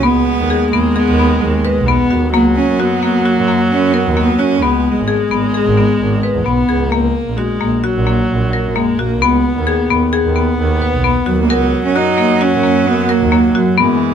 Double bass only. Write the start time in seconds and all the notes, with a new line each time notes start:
0.04 C#2
0.39 D#2
0.74 D#2
1.08 D#2
1.43 D#2
1.77 B1
2.11 D#2
2.34 C#2
2.68 F#2
3.02 F#2
3.36 F#2
3.70 F#2
4.05 D#2
4.39 F#2
4.62 C#2
4.97 G#1
5.31 G#1
5.65 G#1
6.00 G#1
6.34 E2
6.45 B1
6.68 C#2
6.92 C#2
7.27 A#1
7.62 A#1
7.95 A#1
8.30 A#1
8.64 F#2
8.98 A#1
9.21 C#2
9.56 D#2
9.90 D#2
10.24 D#2
10.58 D#2
10.92 B1
11.26 D#2
11.49 C#2
11.83 F#2
12.17 F#2
12.52 F#2
12.86 F#2
13.20 D#2
13.55 F#2
13.78 F#2